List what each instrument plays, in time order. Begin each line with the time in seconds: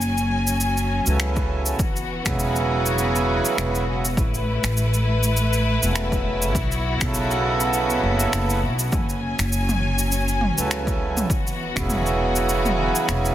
Already playing: upright bass F#1, string section F#3 C#4 G#5
0.01 shaker
0.18 shaker
0.47 shaker
0.60 shaker
0.77 shaker
1.05 upright bass C#2, harmonium C#3 F#3 B3 E4 A4, shaker
1.20 finger snap, shaker
1.36 kick, shaker
1.66 shaker
1.79 upright bass E1, string section E3 B3 F#4, kick, shaker
1.96 shaker
2.24 upright bass E1, harmonium C#3 F#3 B3 E4, finger snap, kick, shaker
2.28 harmonium G#4
2.39 shaker
2.56 shaker
2.86 shaker
2.98 shaker
3.16 shaker
3.45 shaker
3.57 upright bass E1, finger snap, shaker
3.75 shaker
3.87 harmonium C#3 F#3 B3 E4 G#4
4.05 shaker
4.17 upright bass A1, string section A3 E4 B4, kick, shaker
4.34 shaker
4.63 upright bass A1, finger snap, shaker
4.77 shaker
4.94 shaker
5.23 shaker
5.37 shaker
5.53 shaker
5.81 upright bass E1, harmonium C#3 F#3 B3 E4 A4, shaker
5.96 finger snap, shaker
6.12 kick, shaker
6.42 shaker
6.55 upright bass B1, string section B3 F#4, kick, shaker
6.72 shaker
6.99 upright bass B1, harmonium C#3 F#3 B3 E4, finger snap, kick, shaker
7.03 harmonium A4
7.14 shaker
7.31 shaker
7.60 shaker
7.73 shaker
7.90 shaker
8.03 upright bass F#1
8.20 shaker
8.33 upright bass F#1, finger snap, shaker
8.50 shaker
8.63 upright bass B1
8.79 shaker
8.92 upright bass F#1, string section F#3 C#4 G#5, kick, mid tom, shaker
9.09 shaker
9.39 upright bass F#1, finger snap, shaker
9.52 shaker
9.69 mid tom, shaker
9.99 shaker
10.12 shaker
10.28 shaker
10.41 mid tom
10.56 upright bass C#2, harmonium C#3 F#3 B3 E4 A4, shaker
10.71 finger snap, shaker
10.87 kick, shaker
11.17 mid tom, shaker
11.30 upright bass E1, string section E3 B3 F#4, kick, shaker
11.47 shaker
11.75 upright bass E1, harmonium C#3 F#3 B3 E4 G#4, finger snap, kick, shaker
11.90 mid tom, shaker
12.06 shaker
12.36 shaker
12.49 shaker
12.65 mid tom, shaker
12.95 shaker
13.08 upright bass E1, finger snap, shaker
13.25 shaker